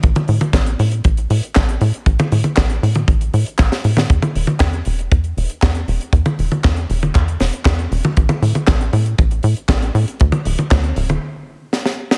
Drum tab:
HH |xxoxxxoxxxoxxxox|xxoxxxoxxxoxxxox|xxoxxxoxxxoxxxox|xxoxxxoxxxoxxxox|
CP |----x-------x---|----x-------x---|----x-------x---|----x---x---x---|
SD |----o-------o---|----o-------oo-o|----o-------o---|----o-----o-o---|
T1 |-o-o------------|-o-o---o-------o|-o-o------------|-o-o---o-------o|
BD |o---o---o---o---|o---o---o---o---|o---o---o---o---|o---o---o---o---|

HH |xxoxxxoxxxoxxxox|xxoxxxox--------|
CP |----x-------x---|----x-----------|
SD |----o-------o---|----o-------oo-o|
T1 |-o-o------------|-o-o---o--------|
BD |o---o---o---o---|o---o-----------|